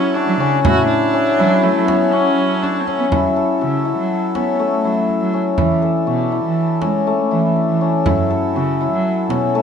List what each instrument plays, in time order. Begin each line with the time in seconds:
Already playing: harmonium F#3 E4 A4 C#5, viola C#4, hammered dulcimer C#4 E4 F#4
0.14 viola D4, hammered dulcimer F#4
0.27 cello F#3
0.40 cello C#3, hammered dulcimer C#4, frame drum
0.64 cello A2, hammered dulcimer E4, viola F#4, frame drum
0.87 viola D4
1.14 hammered dulcimer C#4
1.39 cello F#3, hammered dulcimer E4, frame drum
1.63 cello F#3, viola A3, hammered dulcimer E4
1.76 cello F#3
1.86 viola B3, hammered dulcimer C#4, frame drum
2.12 viola C#4, hammered dulcimer F#4
2.26 cello F#3
2.63 viola D4, hammered dulcimer F#4, frame drum
2.80 viola C4
2.87 viola C#4, hammered dulcimer C#4, frame drum
2.99 cello B3
3.11 cello F#3, harmonium F#3 E4 A4, hammered dulcimer E4, frame drum
3.36 hammered dulcimer A4
3.61 cello C#3, hammered dulcimer F#4
3.85 hammered dulcimer E4
3.98 cello F#3
4.35 cello B3, hammered dulcimer C#4, frame drum
4.59 hammered dulcimer A3
4.84 cello F#3, hammered dulcimer E4
5.09 frame drum
5.21 cello F#3
5.33 hammered dulcimer C#4
5.58 cello E3, harmonium E3 D4, hammered dulcimer E4, frame drum
5.82 hammered dulcimer A4
6.07 cello B2, hammered dulcimer F#4
6.32 hammered dulcimer E4
6.45 cello E3
6.82 cello G#3, hammered dulcimer C#4, frame drum
7.07 hammered dulcimer A3
7.31 cello E3, hammered dulcimer E4
7.56 frame drum
7.68 cello E3
7.81 hammered dulcimer C#4
8.05 cello F#2, harmonium F#3 E4, hammered dulcimer E4, frame drum
8.30 hammered dulcimer A4
8.54 cello C#3, hammered dulcimer F#4
8.81 hammered dulcimer E4
8.92 cello F#3
9.29 cello B2, hammered dulcimer C#4, frame drum
9.55 hammered dulcimer A3